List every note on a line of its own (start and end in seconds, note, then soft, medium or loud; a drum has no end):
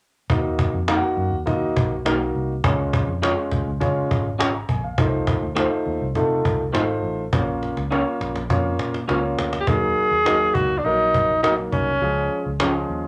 0.30 0.68 D#2 medium
0.30 0.76 A#3 medium
0.30 0.76 D#4 medium
0.30 0.76 F#4 medium
0.30 0.76 D#5 medium
0.30 cajon bass loud
0.59 cajon bass medium
0.74 0.99 F2 medium
0.88 1.34 A#3 medium
0.88 0.98 A#3 medium
0.88 1.34 D#4 medium
0.88 0.98 D#4 medium
0.88 1.34 F#4 medium
0.88 0.98 F#4 medium
0.88 0.99 A#4 medium
0.88 0.95 F5 medium
0.88 cajon slap medium
0.95 1.37 F#5 medium
1.17 1.30 F#2 medium
1.17 cajon slap soft
1.31 1.44 D#2 medium
1.46 1.72 D#3 medium
1.46 1.92 A#3 medium
1.46 1.93 D#4 medium
1.46 1.53 F4 medium
1.46 1.93 D#5 loud
1.46 cajon bass medium
1.53 1.96 F#4 medium
1.61 cajon slap soft
1.76 2.02 A#1 medium
1.76 cajon bass loud
2.05 2.30 B1 medium
2.05 2.15 A#3 medium
2.05 2.51 A#3 medium
2.05 2.51 D#4 medium
2.05 2.15 D#4 medium
2.05 2.51 F#4 medium
2.05 2.15 F#4 medium
2.05 2.16 A#4 medium
2.05 2.51 D#5 medium
2.05 cajon slap medium
2.35 2.60 C2 medium
2.35 cajon slap soft
2.64 3.02 C#2 medium
2.64 3.10 G#3 medium
2.64 3.10 C#4 medium
2.64 3.10 F4 medium
2.64 3.10 C#5 medium
2.64 cajon bass loud
2.93 cajon bass loud
3.07 3.33 F2 medium
3.22 3.69 G#3 medium
3.22 3.32 C#4 medium
3.22 3.68 C#4 medium
3.22 3.32 F4 medium
3.22 3.69 F4 medium
3.22 3.32 G#4 medium
3.22 3.69 C#5 medium
3.22 3.33 C#5 medium
3.22 cajon slap medium
3.51 3.64 C#2 medium
3.51 cajon bass medium
3.67 3.79 C#2 medium
3.80 4.07 C#3 medium
3.80 4.27 G#3 medium
3.80 4.27 C#4 medium
3.80 4.27 F4 medium
3.80 4.27 C#5 medium
3.80 cajon bass medium
3.96 cajon slap soft
4.11 4.62 G#1 medium
4.11 cajon bass medium
4.39 4.49 C#4 medium
4.39 4.49 F4 medium
4.39 4.49 G#4 medium
4.39 4.49 C#5 medium
4.39 4.54 C#6 medium
4.39 cajon slap loud
4.54 4.68 A#5 medium
4.69 4.94 A#1 medium
4.69 4.83 G#5 medium
4.69 cajon bass medium
4.84 5.12 F5 soft
4.98 5.36 C2 medium
4.98 5.44 A3 medium
4.98 5.45 D#4 medium
4.98 5.45 F4 medium
4.98 5.05 A#4 medium
4.98 cajon bass loud
5.05 5.48 C5 medium
5.27 cajon bass loud
5.42 5.68 D2 medium
5.55 5.66 A3 medium
5.55 6.03 A3 medium
5.55 5.66 D#4 medium
5.55 6.03 D#4 medium
5.55 5.66 F4 medium
5.55 6.03 F4 medium
5.55 5.67 C5 medium
5.55 6.03 C5 medium
5.55 cajon slap medium
5.86 5.99 D#2 medium
5.86 cajon slap soft
6.01 6.14 C2 medium
6.15 6.41 C3 medium
6.15 6.62 A3 medium
6.15 6.62 D#4 medium
6.15 6.62 F4 medium
6.15 6.62 A4 medium
6.15 cajon bass medium
6.30 cajon slap soft
6.45 6.70 C2 medium
6.45 cajon bass medium
6.73 7.00 G#1 medium
6.73 6.81 G#3 medium
6.73 6.83 A3 medium
6.73 6.83 D#4 medium
6.73 7.20 D#4 medium
6.73 6.84 F4 medium
6.73 7.21 F4 medium
6.73 6.84 C5 medium
6.73 7.20 C5 medium
6.73 cajon slap medium
6.82 7.24 A3 medium
7.03 7.29 A1 medium
7.03 cajon slap soft
7.33 7.71 A#1 medium
7.33 7.79 A#3 medium
7.33 7.79 C#4 medium
7.33 7.79 F4 medium
7.33 7.79 C#5 medium
7.33 cajon bass loud
7.33 cajon slap medium
7.62 cajon slap soft
7.62 cajon slap medium
7.77 8.02 C#2 medium
7.77 cajon slap medium
7.91 8.38 A#3 medium
7.91 8.01 C#4 medium
7.91 8.38 C#4 medium
7.91 8.01 F4 medium
7.91 8.37 F4 medium
7.91 8.01 A#4 medium
7.91 8.01 C#5 medium
7.91 8.38 C#5 medium
7.91 cajon slap soft
7.91 cajon slap medium
8.20 8.33 A#1 medium
8.20 cajon slap medium
8.35 8.48 A#1 medium
8.35 cajon slap medium
8.50 8.75 F2 medium
8.50 8.96 A#3 medium
8.50 8.96 C#4 medium
8.50 8.96 F4 medium
8.50 8.96 C#5 loud
8.50 cajon bass medium
8.50 cajon slap medium
8.64 cajon slap soft
8.79 9.05 A#2 medium
8.79 cajon slap medium
8.94 cajon slap medium
9.08 9.34 C#2 medium
9.08 9.55 A#3 medium
9.08 9.18 C#4 medium
9.08 9.55 C#4 medium
9.08 9.18 F4 medium
9.08 9.55 F4 medium
9.08 9.18 A#4 medium
9.08 9.16 C5 medium
9.08 9.19 C#5 medium
9.08 cajon slap medium
9.16 9.58 C#5 medium
9.38 9.64 D2 medium
9.38 cajon slap medium
9.53 cajon slap medium
9.60 9.70 G4 medium
9.67 9.93 D#2 loud
9.67 10.14 F#3 medium
9.67 10.14 A#3 medium
9.67 10.14 D#4 medium
9.67 10.56 G#4 medium
9.67 10.14 A#4 medium
9.67 cajon bass loud
9.97 cajon slap soft
10.11 10.50 D#2 medium
10.25 10.72 F#3 medium
10.25 10.72 A#3 medium
10.25 10.35 D#4 medium
10.25 10.72 D#4 medium
10.25 10.36 F#4 medium
10.25 10.72 A#4 medium
10.25 10.36 A#4 medium
10.25 10.36 D#5 medium
10.25 cajon slap medium
10.54 10.81 C#2 medium
10.54 10.79 F#4 medium
10.54 cajon bass medium
10.78 10.86 D4 medium
10.84 11.10 A#1 medium
10.84 11.31 F#3 medium
10.84 11.31 A#3 medium
10.84 11.42 D#4 loud
10.84 11.31 D#4 medium
10.84 11.31 A#4 medium
10.84 cajon slap soft
11.14 11.65 A#1 medium
11.14 cajon bass medium
11.43 11.90 F#3 medium
11.43 11.89 A#3 medium
11.43 11.56 D#4 medium
11.43 11.53 D#4 medium
11.43 11.90 D#4 medium
11.43 11.53 F#4 medium
11.43 11.53 A#4 medium
11.43 11.90 A#4 medium
11.43 11.53 D#5 medium
11.43 cajon slap medium
11.58 cajon slap soft
11.72 11.98 C2 medium
11.72 12.57 C#4 medium
11.72 cajon bass medium
12.01 12.27 C#2 loud
12.01 12.48 F3 medium
12.01 12.48 G#3 medium
12.01 12.48 C#4 medium
12.01 12.48 G#4 medium
12.01 cajon slap soft
12.31 cajon slap soft
12.46 12.84 C#2 medium
12.60 13.07 F3 medium
12.60 13.07 G#3 medium
12.60 12.70 C#4 medium
12.60 13.07 C#4 medium
12.60 12.70 F4 medium
12.60 13.07 G#4 medium
12.60 12.70 G#4 medium
12.60 12.70 C#5 medium
12.60 cajon slap medium
12.89 13.08 D#2 medium
12.89 cajon slap soft